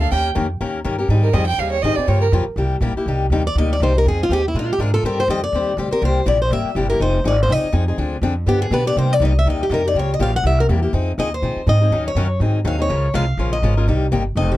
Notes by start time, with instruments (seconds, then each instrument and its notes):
Already playing: upright bass D2
0.00 steel-string acoustic guitar A#3 D4 A4, violin F5
0.11 upright bass D#2, steel-string acoustic guitar D#3 A#3 C#4 G4 A#4, violin G5
0.35 upright bass F2, steel-string acoustic guitar D#3 A#3 C#4 G4 A#4
0.61 upright bass D#2, steel-string acoustic guitar D#3 A#3 C#4 G4 A#4
0.84 upright bass G2, steel-string acoustic guitar D#3 A#3 C#4 G4 A#4
0.98 steel-string acoustic guitar C#4 G4 A#4
1.08 upright bass G#2, steel-string acoustic guitar D#3 G3 C4 D#4 G#4
1.23 violin A#4
1.33 upright bass F2, steel-string acoustic guitar D#3 G3 C4 D#4 G#4, violin D#5
1.47 violin G5
1.58 upright bass D#2, steel-string acoustic guitar D#3 G3 C4 D#4 G#4, violin F5
1.72 violin C#5
1.82 upright bass G#2, steel-string acoustic guitar D#3 G3 C4 D#4 G#4, violin D#5
1.96 steel-string acoustic guitar C4 D#4 G#4, violin D5, muted upright bass stroke
2.08 upright bass G2, steel-string acoustic guitar C#3 F3 A#3 F4 G4, violin C#5
2.21 violin A#4
2.32 upright bass F2, steel-string acoustic guitar C#3 F3 A#3 F4 G4
2.47 muted upright bass stroke
2.56 upright bass C2, steel-string acoustic guitar C3 G3 A#3 E4 G4
2.81 upright bass A#1, steel-string acoustic guitar C3 G3 A#3 E4 G4
2.95 steel-string acoustic guitar A#3 E4 G4, muted upright bass stroke
3.06 upright bass C2, steel-string acoustic guitar C3 G3 A#3 D#4 G4
3.30 upright bass D#2, steel-string acoustic guitar C3 G3 A#3 D#4 G4
3.47 steel-string acoustic guitar D5
3.55 upright bass D2, steel-string acoustic guitar C3 G3 A#3 D#4 G4 D#5
3.73 steel-string acoustic guitar D5
3.80 upright bass C2, steel-string acoustic guitar C3 G3 A#3 D#4 G4 C5
3.95 steel-string acoustic guitar A#3 G4 A#4
4.05 upright bass F2, steel-string acoustic guitar F3 C4 D#4 G#4
4.23 steel-string acoustic guitar F4
4.29 upright bass D#2, steel-string acoustic guitar F3 C4 D#4 G4 G#4
4.48 steel-string acoustic guitar E4
4.54 upright bass A#2, steel-string acoustic guitar F3 G#3 D4 F4 A#4
4.59 steel-string acoustic guitar F4
4.73 steel-string acoustic guitar G4
4.78 upright bass G#2, steel-string acoustic guitar F3 G#3 D4 F4 G#4 A#4
4.94 steel-string acoustic guitar D4 F4 A4 A#4
5.03 upright bass G2, steel-string acoustic guitar D#3 G3 C4 G4 A#4 C5
5.20 steel-string acoustic guitar C5
5.28 upright bass F2, steel-string acoustic guitar D#3 G3 C4 G4 C5 D#5
5.44 steel-string acoustic guitar D5
5.52 upright bass D#2, steel-string acoustic guitar D#3 G3 C4 G4 C5
5.77 upright bass D2, steel-string acoustic guitar D#3 G3 C4 G4 C5
5.91 steel-string acoustic guitar C4 G4 A#4 C5, muted upright bass stroke
6.01 upright bass C2, steel-string acoustic guitar C3 G3 A#3 E4 G4 C5
6.26 upright bass A#1, steel-string acoustic guitar C3 G3 A#3 E4 G4 D5
6.42 steel-string acoustic guitar C5
6.51 upright bass G#1, steel-string acoustic guitar C3 G3 A#3 E4 G4 E5
6.63 muted upright bass stroke
6.75 upright bass G1, steel-string acoustic guitar C3 G3 A#3 E4 G4
6.90 steel-string acoustic guitar A#3 E4 G4 A#4
7.00 upright bass F1, steel-string acoustic guitar F3 C4 D#4 G#4 C5
7.24 upright bass G#1, steel-string acoustic guitar F3 C4 D#4 G#4 D5
7.43 steel-string acoustic guitar C5
7.48 upright bass C2, steel-string acoustic guitar F3 C4 D#4 G#4 D#5
7.63 muted upright bass stroke
7.72 upright bass F2, steel-string acoustic guitar F3 C4 D#4 G#4
7.88 steel-string acoustic guitar C4 D#4 G#4
7.98 upright bass D2, steel-string acoustic guitar D3 F3 C4 D4 G#4
8.22 upright bass F2, steel-string acoustic guitar D3 F3 C4 D4 G#4
8.46 upright bass G2, steel-string acoustic guitar D3 F3 B3 D4 G4
8.62 steel-string acoustic guitar G#4
8.71 upright bass B2, steel-string acoustic guitar D3 F3 B3 D4 G4 B4
8.86 steel-string acoustic guitar B3 D4 G4 D5
8.96 upright bass C3, steel-string acoustic guitar C3 G3 A#3 D#4 G4 C5
9.13 steel-string acoustic guitar D5
9.20 upright bass C2, steel-string acoustic guitar C3 G3 A#3 D#4 G4
9.25 steel-string acoustic guitar D#5
9.39 steel-string acoustic guitar E5
9.46 upright bass D#2, steel-string acoustic guitar C3 G3 A#3 D#4 G4
9.50 steel-string acoustic guitar D#5
9.63 steel-string acoustic guitar G4
9.70 upright bass F2, steel-string acoustic guitar C3 G3 A#3 D#4 G4
9.74 steel-string acoustic guitar A#4
9.85 steel-string acoustic guitar A#3 D#4 G4 D5
9.94 upright bass C#2, steel-string acoustic guitar C#3 F3 A#3 F4 G4
9.99 steel-string acoustic guitar C#5
10.14 steel-string acoustic guitar D#5
10.19 upright bass A#1, steel-string acoustic guitar C#3 F3 A#3 F4 G4 F5
10.36 steel-string acoustic guitar F#5
10.43 upright bass C2, steel-string acoustic guitar C3 G3 A#3 E4 G4 E5
10.60 steel-string acoustic guitar A#4
10.69 upright bass E2, steel-string acoustic guitar C3 G3 A#3 E4 G4
10.82 steel-string acoustic guitar A#3 E4 G4
10.93 upright bass F2, steel-string acoustic guitar F3 C4 D#4 G#4
11.18 upright bass D#2, steel-string acoustic guitar F3 C4 D#4 G#4 D#5
11.34 steel-string acoustic guitar C5
11.42 upright bass A#2, steel-string acoustic guitar F3 C4 D#4 G#4
11.56 muted upright bass stroke
11.67 upright bass G#2, steel-string acoustic guitar F3 C4 D#4 G#4 D#5
11.81 steel-string acoustic guitar C4 D#4 G#4
11.91 upright bass D#2, steel-string acoustic guitar D#3 F#3 C#4 D#4 A#4
12.08 steel-string acoustic guitar C#5
12.15 upright bass F#2, steel-string acoustic guitar D#3 F#3 C#4 D#4 A#4
12.40 upright bass G#2, steel-string acoustic guitar D#3 F#3 C4 D#4 G#4
12.64 upright bass D#2, steel-string acoustic guitar D#3 F#3 C4 D#4 G#4 F5
12.78 steel-string acoustic guitar C4 D#4 G#4 C#5
12.89 upright bass C#2, steel-string acoustic guitar C#3 F3 G#3 C#4 F4 A#4
13.13 upright bass C2, steel-string acoustic guitar C#3 F3 G#3 C#4 F4 A#4 F5
13.37 upright bass A#1, steel-string acoustic guitar C#3 F3 G#3 C#4 F4 A#4
13.53 steel-string acoustic guitar D#5
13.62 upright bass G#1, steel-string acoustic guitar C#3 F3 G#3 C#4 F4 A#4
13.77 steel-string acoustic guitar G#3 C#4 F4 A#4
13.87 upright bass C2, steel-string acoustic guitar C3 G3 A#3 D#4 G4
14.12 upright bass G1, steel-string acoustic guitar C3 G3 A#3 D#4 G4
14.36 upright bass F1, steel-string acoustic guitar F3 C4 D#4 A4 D#5
14.52 steel-string acoustic guitar G4